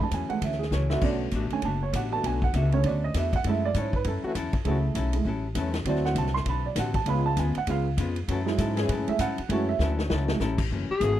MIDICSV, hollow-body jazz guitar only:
0, 0, Header, 1, 2, 480
1, 0, Start_track
1, 0, Key_signature, 3, "minor"
1, 0, Tempo, 302419
1, 1635, Time_signature, 4, 2, 24, 8
1, 17775, End_track
2, 0, Start_track
2, 0, Title_t, "Hollow-body jazz guitar"
2, 0, Program_c, 0, 26
2, 199, Note_on_c, 0, 42, 53
2, 202, Note_on_c, 0, 52, 56
2, 213, Note_on_c, 0, 57, 54
2, 228, Note_on_c, 0, 61, 63
2, 506, Note_off_c, 0, 42, 0
2, 507, Note_off_c, 0, 52, 0
2, 513, Note_off_c, 0, 57, 0
2, 521, Note_off_c, 0, 61, 0
2, 673, Note_on_c, 0, 42, 43
2, 697, Note_on_c, 0, 52, 53
2, 699, Note_on_c, 0, 57, 54
2, 721, Note_on_c, 0, 61, 59
2, 983, Note_off_c, 0, 42, 0
2, 995, Note_off_c, 0, 52, 0
2, 996, Note_off_c, 0, 57, 0
2, 1007, Note_off_c, 0, 61, 0
2, 1149, Note_on_c, 0, 42, 58
2, 1161, Note_on_c, 0, 52, 60
2, 1170, Note_on_c, 0, 57, 67
2, 1175, Note_on_c, 0, 61, 62
2, 1462, Note_off_c, 0, 42, 0
2, 1468, Note_off_c, 0, 52, 0
2, 1472, Note_off_c, 0, 57, 0
2, 1475, Note_off_c, 0, 61, 0
2, 1630, Note_on_c, 0, 47, 51
2, 1643, Note_on_c, 0, 57, 48
2, 1670, Note_on_c, 0, 62, 51
2, 1678, Note_on_c, 0, 66, 52
2, 1942, Note_off_c, 0, 47, 0
2, 1949, Note_off_c, 0, 57, 0
2, 1962, Note_off_c, 0, 62, 0
2, 1966, Note_off_c, 0, 66, 0
2, 2112, Note_on_c, 0, 47, 61
2, 2124, Note_on_c, 0, 57, 64
2, 2138, Note_on_c, 0, 62, 68
2, 2144, Note_on_c, 0, 66, 64
2, 2423, Note_off_c, 0, 47, 0
2, 2430, Note_off_c, 0, 57, 0
2, 2436, Note_off_c, 0, 62, 0
2, 2439, Note_off_c, 0, 66, 0
2, 2594, Note_on_c, 0, 47, 49
2, 2606, Note_on_c, 0, 57, 52
2, 2619, Note_on_c, 0, 62, 49
2, 2633, Note_on_c, 0, 66, 56
2, 2905, Note_off_c, 0, 47, 0
2, 2911, Note_off_c, 0, 57, 0
2, 2917, Note_off_c, 0, 62, 0
2, 2924, Note_off_c, 0, 66, 0
2, 3073, Note_on_c, 0, 47, 61
2, 3080, Note_on_c, 0, 57, 66
2, 3093, Note_on_c, 0, 62, 74
2, 3103, Note_on_c, 0, 66, 72
2, 3384, Note_off_c, 0, 47, 0
2, 3388, Note_off_c, 0, 57, 0
2, 3394, Note_off_c, 0, 62, 0
2, 3399, Note_off_c, 0, 66, 0
2, 3567, Note_on_c, 0, 47, 49
2, 3586, Note_on_c, 0, 57, 44
2, 3596, Note_on_c, 0, 62, 54
2, 3614, Note_on_c, 0, 66, 52
2, 3871, Note_off_c, 0, 47, 0
2, 3881, Note_off_c, 0, 57, 0
2, 3886, Note_off_c, 0, 62, 0
2, 3895, Note_off_c, 0, 66, 0
2, 4038, Note_on_c, 0, 47, 59
2, 4056, Note_on_c, 0, 57, 62
2, 4061, Note_on_c, 0, 62, 65
2, 4079, Note_on_c, 0, 66, 70
2, 4347, Note_off_c, 0, 47, 0
2, 4356, Note_off_c, 0, 57, 0
2, 4358, Note_off_c, 0, 62, 0
2, 4367, Note_off_c, 0, 66, 0
2, 4528, Note_on_c, 0, 47, 48
2, 4548, Note_on_c, 0, 57, 52
2, 4563, Note_on_c, 0, 62, 51
2, 4581, Note_on_c, 0, 66, 51
2, 4831, Note_off_c, 0, 47, 0
2, 4842, Note_off_c, 0, 57, 0
2, 4849, Note_off_c, 0, 62, 0
2, 4858, Note_off_c, 0, 66, 0
2, 5007, Note_on_c, 0, 47, 66
2, 5015, Note_on_c, 0, 57, 65
2, 5024, Note_on_c, 0, 62, 69
2, 5037, Note_on_c, 0, 66, 73
2, 5311, Note_off_c, 0, 47, 0
2, 5315, Note_off_c, 0, 57, 0
2, 5320, Note_off_c, 0, 62, 0
2, 5326, Note_off_c, 0, 66, 0
2, 5484, Note_on_c, 0, 54, 54
2, 5492, Note_on_c, 0, 61, 51
2, 5498, Note_on_c, 0, 64, 58
2, 5521, Note_on_c, 0, 69, 55
2, 5789, Note_off_c, 0, 54, 0
2, 5793, Note_off_c, 0, 61, 0
2, 5797, Note_off_c, 0, 64, 0
2, 5808, Note_off_c, 0, 69, 0
2, 5949, Note_on_c, 0, 54, 63
2, 5959, Note_on_c, 0, 64, 68
2, 5962, Note_on_c, 0, 61, 54
2, 5975, Note_on_c, 0, 69, 66
2, 6262, Note_off_c, 0, 54, 0
2, 6267, Note_off_c, 0, 64, 0
2, 6268, Note_off_c, 0, 61, 0
2, 6275, Note_off_c, 0, 69, 0
2, 6425, Note_on_c, 0, 54, 50
2, 6450, Note_on_c, 0, 61, 50
2, 6451, Note_on_c, 0, 64, 54
2, 6476, Note_on_c, 0, 69, 53
2, 6740, Note_off_c, 0, 54, 0
2, 6753, Note_off_c, 0, 61, 0
2, 6753, Note_off_c, 0, 64, 0
2, 6765, Note_off_c, 0, 69, 0
2, 6892, Note_on_c, 0, 54, 66
2, 6902, Note_on_c, 0, 61, 69
2, 6919, Note_on_c, 0, 64, 74
2, 6923, Note_on_c, 0, 69, 70
2, 7213, Note_off_c, 0, 54, 0
2, 7218, Note_off_c, 0, 61, 0
2, 7227, Note_off_c, 0, 64, 0
2, 7228, Note_off_c, 0, 69, 0
2, 7382, Note_on_c, 0, 54, 51
2, 7401, Note_on_c, 0, 61, 61
2, 7408, Note_on_c, 0, 64, 62
2, 7428, Note_on_c, 0, 69, 56
2, 7698, Note_off_c, 0, 54, 0
2, 7708, Note_off_c, 0, 61, 0
2, 7711, Note_off_c, 0, 64, 0
2, 7721, Note_off_c, 0, 69, 0
2, 7859, Note_on_c, 0, 54, 64
2, 7873, Note_on_c, 0, 64, 76
2, 7876, Note_on_c, 0, 61, 68
2, 7888, Note_on_c, 0, 69, 71
2, 8176, Note_off_c, 0, 54, 0
2, 8183, Note_off_c, 0, 64, 0
2, 8185, Note_off_c, 0, 61, 0
2, 8191, Note_off_c, 0, 69, 0
2, 8344, Note_on_c, 0, 54, 52
2, 8357, Note_on_c, 0, 61, 56
2, 8381, Note_on_c, 0, 64, 53
2, 8383, Note_on_c, 0, 69, 58
2, 8659, Note_off_c, 0, 54, 0
2, 8665, Note_off_c, 0, 61, 0
2, 8677, Note_off_c, 0, 64, 0
2, 8678, Note_off_c, 0, 69, 0
2, 8811, Note_on_c, 0, 54, 74
2, 8830, Note_on_c, 0, 61, 74
2, 8836, Note_on_c, 0, 64, 72
2, 8848, Note_on_c, 0, 69, 78
2, 9132, Note_off_c, 0, 54, 0
2, 9141, Note_off_c, 0, 61, 0
2, 9145, Note_off_c, 0, 64, 0
2, 9150, Note_off_c, 0, 69, 0
2, 9293, Note_on_c, 0, 50, 47
2, 9317, Note_on_c, 0, 60, 50
2, 9334, Note_on_c, 0, 66, 57
2, 9342, Note_on_c, 0, 69, 56
2, 9613, Note_off_c, 0, 50, 0
2, 9625, Note_off_c, 0, 60, 0
2, 9633, Note_off_c, 0, 66, 0
2, 9637, Note_off_c, 0, 69, 0
2, 9786, Note_on_c, 0, 50, 54
2, 9797, Note_on_c, 0, 60, 59
2, 9803, Note_on_c, 0, 66, 61
2, 9824, Note_on_c, 0, 69, 67
2, 10099, Note_off_c, 0, 50, 0
2, 10104, Note_off_c, 0, 60, 0
2, 10107, Note_off_c, 0, 66, 0
2, 10118, Note_off_c, 0, 69, 0
2, 10269, Note_on_c, 0, 50, 51
2, 10282, Note_on_c, 0, 60, 56
2, 10293, Note_on_c, 0, 66, 56
2, 10314, Note_on_c, 0, 69, 56
2, 10580, Note_off_c, 0, 50, 0
2, 10587, Note_off_c, 0, 60, 0
2, 10592, Note_off_c, 0, 66, 0
2, 10603, Note_off_c, 0, 69, 0
2, 10746, Note_on_c, 0, 50, 66
2, 10763, Note_on_c, 0, 60, 64
2, 10771, Note_on_c, 0, 66, 69
2, 10779, Note_on_c, 0, 69, 67
2, 11058, Note_off_c, 0, 50, 0
2, 11067, Note_off_c, 0, 60, 0
2, 11071, Note_off_c, 0, 66, 0
2, 11075, Note_off_c, 0, 69, 0
2, 11234, Note_on_c, 0, 49, 47
2, 11251, Note_on_c, 0, 56, 59
2, 11268, Note_on_c, 0, 59, 54
2, 11279, Note_on_c, 0, 65, 55
2, 11542, Note_off_c, 0, 49, 0
2, 11551, Note_off_c, 0, 56, 0
2, 11559, Note_off_c, 0, 59, 0
2, 11565, Note_off_c, 0, 65, 0
2, 11714, Note_on_c, 0, 49, 59
2, 11723, Note_on_c, 0, 56, 64
2, 11737, Note_on_c, 0, 59, 63
2, 11740, Note_on_c, 0, 65, 71
2, 12022, Note_off_c, 0, 49, 0
2, 12027, Note_off_c, 0, 56, 0
2, 12034, Note_off_c, 0, 59, 0
2, 12035, Note_off_c, 0, 65, 0
2, 12198, Note_on_c, 0, 49, 47
2, 12205, Note_on_c, 0, 56, 49
2, 12228, Note_on_c, 0, 59, 59
2, 12239, Note_on_c, 0, 65, 58
2, 12504, Note_off_c, 0, 49, 0
2, 12508, Note_off_c, 0, 56, 0
2, 12519, Note_off_c, 0, 59, 0
2, 12525, Note_off_c, 0, 65, 0
2, 12670, Note_on_c, 0, 49, 64
2, 12684, Note_on_c, 0, 56, 67
2, 12692, Note_on_c, 0, 59, 73
2, 12697, Note_on_c, 0, 65, 77
2, 12980, Note_off_c, 0, 49, 0
2, 12987, Note_off_c, 0, 56, 0
2, 12991, Note_off_c, 0, 59, 0
2, 12993, Note_off_c, 0, 65, 0
2, 13154, Note_on_c, 0, 54, 61
2, 13170, Note_on_c, 0, 61, 64
2, 13188, Note_on_c, 0, 64, 66
2, 13199, Note_on_c, 0, 69, 66
2, 13462, Note_off_c, 0, 54, 0
2, 13470, Note_off_c, 0, 61, 0
2, 13479, Note_off_c, 0, 64, 0
2, 13485, Note_off_c, 0, 69, 0
2, 13612, Note_on_c, 0, 54, 65
2, 13632, Note_on_c, 0, 61, 65
2, 13647, Note_on_c, 0, 64, 71
2, 13647, Note_on_c, 0, 69, 75
2, 13931, Note_off_c, 0, 54, 0
2, 13941, Note_off_c, 0, 61, 0
2, 13948, Note_off_c, 0, 64, 0
2, 13949, Note_off_c, 0, 69, 0
2, 14111, Note_on_c, 0, 54, 67
2, 14134, Note_on_c, 0, 61, 67
2, 14142, Note_on_c, 0, 64, 61
2, 14152, Note_on_c, 0, 69, 61
2, 14421, Note_off_c, 0, 54, 0
2, 14432, Note_off_c, 0, 61, 0
2, 14436, Note_off_c, 0, 64, 0
2, 14441, Note_off_c, 0, 69, 0
2, 14595, Note_on_c, 0, 54, 72
2, 14602, Note_on_c, 0, 61, 66
2, 14614, Note_on_c, 0, 64, 79
2, 14628, Note_on_c, 0, 69, 76
2, 14903, Note_off_c, 0, 54, 0
2, 14906, Note_off_c, 0, 61, 0
2, 14912, Note_off_c, 0, 64, 0
2, 14919, Note_off_c, 0, 69, 0
2, 15057, Note_on_c, 0, 54, 48
2, 15075, Note_on_c, 0, 61, 57
2, 15092, Note_on_c, 0, 64, 59
2, 15102, Note_on_c, 0, 69, 57
2, 15374, Note_off_c, 0, 54, 0
2, 15383, Note_off_c, 0, 61, 0
2, 15392, Note_off_c, 0, 64, 0
2, 15396, Note_off_c, 0, 69, 0
2, 15568, Note_on_c, 0, 54, 59
2, 15575, Note_on_c, 0, 61, 62
2, 15591, Note_on_c, 0, 64, 67
2, 15594, Note_on_c, 0, 69, 67
2, 15870, Note_off_c, 0, 54, 0
2, 15874, Note_off_c, 0, 61, 0
2, 15882, Note_off_c, 0, 64, 0
2, 15883, Note_off_c, 0, 69, 0
2, 16029, Note_on_c, 0, 54, 54
2, 16049, Note_on_c, 0, 61, 60
2, 16057, Note_on_c, 0, 64, 61
2, 16074, Note_on_c, 0, 69, 66
2, 16341, Note_off_c, 0, 54, 0
2, 16351, Note_off_c, 0, 61, 0
2, 16355, Note_off_c, 0, 64, 0
2, 16364, Note_off_c, 0, 69, 0
2, 16519, Note_on_c, 0, 54, 76
2, 16520, Note_on_c, 0, 61, 79
2, 16529, Note_on_c, 0, 64, 79
2, 16545, Note_on_c, 0, 69, 78
2, 16826, Note_off_c, 0, 54, 0
2, 16827, Note_off_c, 0, 61, 0
2, 16832, Note_off_c, 0, 64, 0
2, 16840, Note_off_c, 0, 69, 0
2, 16996, Note_on_c, 0, 42, 53
2, 17015, Note_on_c, 0, 52, 60
2, 17021, Note_on_c, 0, 57, 53
2, 17041, Note_on_c, 0, 61, 56
2, 17306, Note_off_c, 0, 42, 0
2, 17315, Note_off_c, 0, 52, 0
2, 17318, Note_off_c, 0, 57, 0
2, 17328, Note_off_c, 0, 61, 0
2, 17475, Note_on_c, 0, 42, 54
2, 17490, Note_on_c, 0, 52, 55
2, 17497, Note_on_c, 0, 57, 60
2, 17507, Note_on_c, 0, 61, 58
2, 17775, Note_off_c, 0, 42, 0
2, 17775, Note_off_c, 0, 52, 0
2, 17775, Note_off_c, 0, 57, 0
2, 17775, Note_off_c, 0, 61, 0
2, 17775, End_track
0, 0, End_of_file